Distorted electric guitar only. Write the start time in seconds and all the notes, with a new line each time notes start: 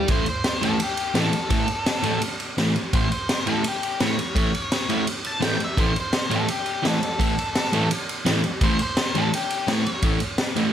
0.10 A2 E3 A3
0.61 A2 E3 A3
1.14 A2 E3 A3
1.49 A2 E3 A3
2.03 A2 E3 A3
2.58 A2 E3 A3
2.93 A2 E3 A3
3.47 A2 E3 A3
4.01 A2 E3 A3
4.35 A2 E3 A3
4.89 A2 E3 A3
5.40 A2 E3 A3
5.78 A2 E3 A3
6.30 A2 E3 A3
6.83 A2 E3 A3
7.19 A2 E3 A3
7.73 A2 E3 A3
8.25 A2 E3 A3
8.62 A2 E3 A3
9.15 A2 E3 A3
9.67 A2 E3 A3
10.02 A2 E3 A3
10.56 A2 E3 A3